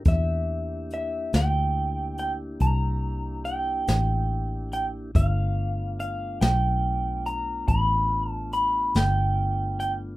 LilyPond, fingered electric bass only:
\new Staff \with { instrumentName = "Fingered electric bass" } { \clef bass \time 12/8 \key g \mixolydian \tempo 4. = 47 e,4. d,4. c,4. a,,4. | g,,4. b,,4. a,,4. g,,4. | }